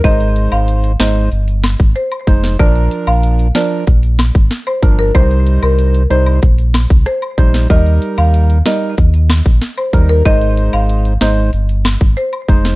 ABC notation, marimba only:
X:1
M:4/4
L:1/16
Q:1/4=94
K:Ablyd
V:1 name="Marimba"
e z2 f z2 e z4 z c3 z | d z2 f z2 d z6 c z B | c z2 B z2 c z4 z c3 z | e z2 f z2 e z6 c z B |
e z2 f z2 e z4 z c3 z |]